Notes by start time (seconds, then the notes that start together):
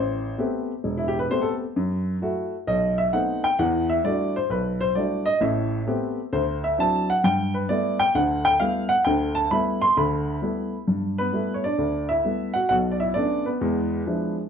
Already playing: A1 C5
0.38 A3 B3 C4 G4
0.84 E1
0.97 E4
1.08 G4
1.19 B4
1.30 A3 B3 C4 G4 C5
1.42 A4
1.76 F#2
2.22 A3 E4 F#4
2.67 B1 D#5
2.98 E5
3.13 A3 B3 C4 D#4 F#5
3.44 G5
3.59 E2 E3 F#5
3.89 E5
4.04 G3 A3 D4 E4 F#4 D5
4.36 C5
4.50 B1 B4
4.81 C5
4.95 G3 A3 D4 E4 F#4 D5
5.26 D#5
5.41 A1 A2 E5
5.87 A3 B3 C4 G4
6.33 D2 C5
6.64 E5
6.78 F#3 C4 D4 E4 A5
7.10 F#5
7.24 G2 G5
7.54 B4
7.69 G3 A3 B3 E4 D5
8.00 G5
8.15 D2 D3 F#5
8.45 G5
8.60 G3 A3 B3 E4 F5
8.89 F#5
9.04 D2 D3 G5
9.35 A5
9.51 G3 A3 B3 E4 B5
9.82 C6
9.97 D2 D3 B5
10.42 G3 A3 B3 E4
10.88 G2
11.18 B3 B4
11.32 G3 A3 B3 E4
11.54 C#5
11.64 D4 D5
11.78 D2
12.09 E4 E5
12.24 G3 A3 B3 E4
12.54 F#4 F#5
12.69 B1 B2 F#4 F#5
12.91 D5
13.00 E4 E5
13.14 A3 B3 C#4 D4 D5
13.46 B3 B4
13.61 E2 G#3
14.06 F3 G#3 D4 E4